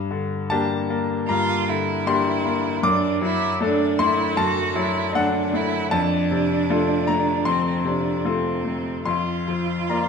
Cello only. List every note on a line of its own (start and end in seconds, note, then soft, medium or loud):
1.29 1.70 F4 medium
1.68 2.84 E4 medium
2.86 3.22 D4 medium
3.23 3.61 E4 medium
3.63 4.00 D4 medium
3.99 4.39 E4 medium
4.37 4.77 F#4 medium
4.75 5.15 E4 medium
5.14 5.56 D4 medium
5.55 5.92 E4 medium
5.93 7.49 D4 medium
7.47 7.89 C4 medium
7.87 8.27 D4 medium
8.26 9.07 C4 medium
9.08 10.09 F4 medium